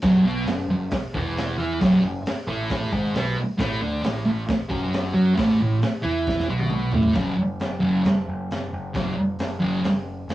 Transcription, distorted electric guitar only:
0.03 F#2 F#3
0.26 B2 B3
0.49 F#2
0.70 F#2
1.14 E2 E3
1.58 E3 E4
1.80 F#2 F#3
2.00 F#2
2.48 A2 A3
2.93 G#2 G#3
3.15 B2 B3
3.38 muted distorted electric guitar stroke
3.58 A2 A3
3.82 D3 D4
4.04 A2
4.25 A2
4.69 F#2 F#3
5.14 F#3 F#4
5.35 A2 A3
5.60 A2
6.03 E3 E4
6.49 B2 B3
6.94 A2 A3
7.14 F#2 C#3 F#3
7.80 F#2 C#3 F#3
8.95 F#2 C#3 F#3
9.60 F#2 C#3 F#3

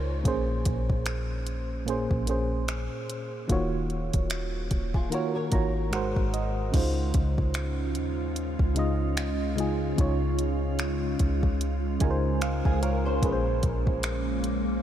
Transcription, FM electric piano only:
Already playing: C#3 G#3 D#4 F4 C5
0.23 A#2 A#3 C#4 G#4
0.28 C5
1.86 A#2 A#3 C#4 G#4
1.90 C5
2.26 A#2 A#3 C#4 G#4
2.31 C5
3.48 D#3 A#3 F4 F#4
3.52 C#5
5.10 D#3 A#3 F4 F#4
5.15 C#5
5.51 D#3 A#3 F4 F#4 A#5
5.55 C#5
5.91 G#2 G#3 F#4 A#4 F#5
5.95 C5
6.34 D#5
6.72 C#3 G#3 D#4 F4
6.76 C5
8.75 C#3 G#3 D#4 F4
8.79 D#5
9.56 C#3 G#3 D#4 F4
9.60 G#4
9.97 C#3 G#3 D#4 F4
10.01 C#5
11.99 C#3 G#3 D#4 F4 G#5
12.04 A#4
12.10 C5
12.42 F5
12.66 F5 G#5
12.83 C#5 F5
13.06 A#4 C#5
13.21 A#2 A#3 C#4 G#4
13.26 B4
13.32 C5

